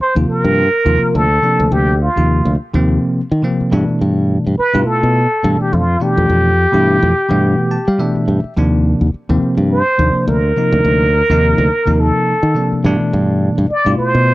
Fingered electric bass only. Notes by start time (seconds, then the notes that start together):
0.00 muted fingered electric bass stroke
0.16 D#2
0.29 muted fingered electric bass stroke
0.44 G2
0.86 D#2
1.02 muted fingered electric bass stroke
1.15 D2
1.60 D2
1.72 D2
2.17 D#2
2.45 D2
2.74 D#2
3.32 D#3
3.61 muted fingered electric bass stroke
3.72 G2
3.89 muted fingered electric bass stroke
4.01 G2
4.47 G2
4.59 muted fingered electric bass stroke
4.75 G2
4.87 muted fingered electric bass stroke
5.03 B2
5.44 G2
5.61 muted fingered electric bass stroke
5.73 F2
6.17 F2
6.29 F2
6.74 G2
7.03 F2
7.31 G2
7.88 G3
8.16 muted fingered electric bass stroke
8.28 G2
8.44 muted fingered electric bass stroke
8.57 D#2
9.01 D#2
9.14 muted fingered electric bass stroke
9.29 D#2
9.42 muted fingered electric bass stroke
9.57 G2
9.99 D#2
10.15 muted fingered electric bass stroke
10.28 D2
10.72 D2
10.85 D2
11.30 D#2
11.58 D2
11.87 D#2
12.43 D#3
12.72 muted fingered electric bass stroke
12.84 G2
13.00 muted fingered electric bass stroke
13.13 G2
13.58 G2
13.70 muted fingered electric bass stroke
13.86 G2
13.99 muted fingered electric bass stroke
14.15 B2